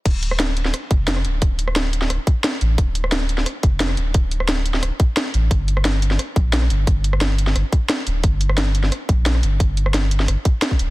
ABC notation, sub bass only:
X:1
M:4/4
L:1/8
Q:1/4=176
K:Dm
V:1 name="Sub bass" clef=bass
D,,,4 z F,,,2 D,,, | D,,,4 D,,, z2 A,,, | D,,,4 z F,,,2 D,,, | D,,,4 D,,, z2 A,,, |
G,,,4 z B,,,2 G,,, | G,,,4 G,,, z2 D,,, | G,,,4 z B,,,2 G,,, | G,,,4 G,,, z2 D,,, |]